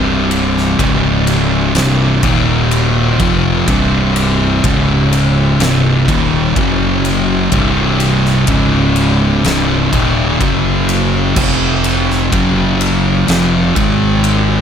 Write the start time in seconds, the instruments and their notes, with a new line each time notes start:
Already playing: fingered electric bass C1, distorted electric guitar C2 G2 C3
0.31 ride
0.57 snare
0.79 fingered electric bass C#1, distorted electric guitar C#2 G#2 C#3, kick, ride
1.27 ride
1.75 fingered electric bass C1, distorted electric guitar C2 G2 C3, snare, ride
2.23 fingered electric bass D#1, distorted electric guitar D#2 A#2 D#3, kick, ride
2.71 ride
3.20 fingered electric bass F1, distorted electric guitar F2 C3 F3, kick, ride
3.68 fingered electric bass C1, distorted electric guitar C2 G2 C3, kick, ride
4.16 ride
4.64 fingered electric bass C#1, distorted electric guitar C#2 G#2 C#3, kick, ride
5.13 ride
5.59 fingered electric bass C1, distorted electric guitar C2 G2 C3, snare, ride
6.08 fingered electric bass D#1, distorted electric guitar D#2 A#2 D#3, kick, ride
6.56 fingered electric bass F#1, distorted electric guitar F#2 C#3 F#3, kick, ride
7.05 ride
7.52 fingered electric bass C1, distorted electric guitar C2 G2 C3, kick, ride
8.00 ride
8.26 snare
8.47 fingered electric bass C#1, distorted electric guitar C#2 G#2 C#3, kick, ride
8.96 ride
9.44 fingered electric bass C1, distorted electric guitar C2 G2 C3, snare, ride
9.92 fingered electric bass D#1, distorted electric guitar D#2 A#2 D#3, kick, ride
10.41 fingered electric bass F#1, distorted electric guitar F#2 C#3 F#3, kick, ride
10.89 ride
11.36 fingered electric bass F1, distorted electric guitar F2 C3 F3, kick, crash
11.84 ride
12.11 snare
12.32 fingered electric bass F#1, distorted electric guitar F#2 C#3 F#3, kick, ride
12.81 ride
13.27 fingered electric bass F1, distorted electric guitar F2 C3 F3, snare, ride
13.76 fingered electric bass G#1, distorted electric guitar G#2 D#3 G#3, kick, ride
14.24 ride